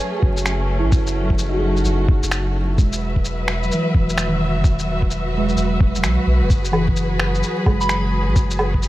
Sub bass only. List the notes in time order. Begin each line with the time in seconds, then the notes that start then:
0.23 F#1
0.84 A1
0.92 F#1
1.85 F#1
2.23 F#1
2.78 E1
3.94 E1
4.56 F#1
4.64 E1
5.57 E1
5.95 E1
6.04 B1
6.27 B1
6.41 E1
6.50 F#1
7.66 F#1
8.27 A1
8.36 F#1